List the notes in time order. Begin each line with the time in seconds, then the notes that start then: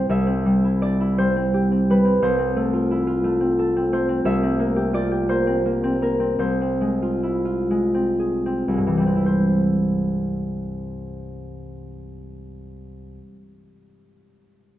Already playing: G3 C4 E4 C5
0.09 C2 E5
0.27 C4
0.46 G3
0.64 E4
0.81 D4 D5
1.00 E4
1.18 G3 C5
1.36 C4
1.54 G4
1.72 C4
1.90 G3 B4
2.05 C4
2.22 C2 C5
2.39 C4
2.56 A3
2.73 F4
2.91 E4
3.07 F4
3.24 A3
3.41 C4
3.59 A4
3.76 C4
3.92 A3 C5
4.09 C4
4.25 C2 E5
4.43 C4
4.59 A#3
4.76 G4
4.93 F4 D5
5.11 G4
5.29 A#3 C5
5.47 C4
5.66 A#3
5.84 C4
6.02 A#3 A#4
6.20 C4
6.39 C2 C5
6.61 C4
6.81 G#3
7.02 F4
7.23 E4
7.45 F4
7.71 G#3
7.94 C4
8.19 G#4
8.46 C4
8.68 C2
8.74 G2 G#3
8.87 E3
8.97 G3 C4
9.06 C4
9.16 E4
9.26 C5